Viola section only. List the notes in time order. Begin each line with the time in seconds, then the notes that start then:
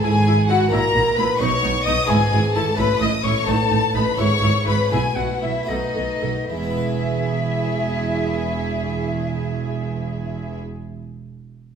0.03 E4
0.26 E4
0.49 E4
0.73 E4
0.95 E4
1.18 E4
1.41 D#4
1.63 D#4
1.86 D#4
2.08 E4
2.31 E4
2.55 E4
2.77 E4
3.00 E4
3.24 E4
3.47 D#4
3.70 D#4
3.93 D#4
4.18 E4
4.43 E4
4.66 E4
4.91 E4
5.16 E4
5.42 E4
5.68 A4
5.94 A4
6.22 A4
6.49 G#4